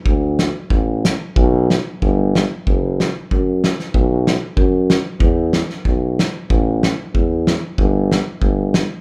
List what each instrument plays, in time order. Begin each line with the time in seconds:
0.05 tuba D2, kick
0.39 snare, hi-hat pedal
0.70 tuba A1, kick
1.05 snare, hi-hat pedal
1.36 tuba B1, kick
1.70 snare
2.02 tuba G1, kick
2.35 snare
2.67 tuba F#1, kick
3.00 snare
3.31 tuba F#2, kick
3.64 snare
3.80 snare
3.94 tuba B1, kick
4.27 snare
4.57 tuba F#2, kick
4.90 snare
5.20 tuba E2, kick
5.53 snare
5.70 snare
5.85 tuba B1, kick
6.19 snare
6.49 tuba A1, kick
6.83 snare
7.14 tuba E2, kick
7.47 snare
7.78 tuba G1, kick
8.11 snare
8.41 tuba G1, kick
8.74 snare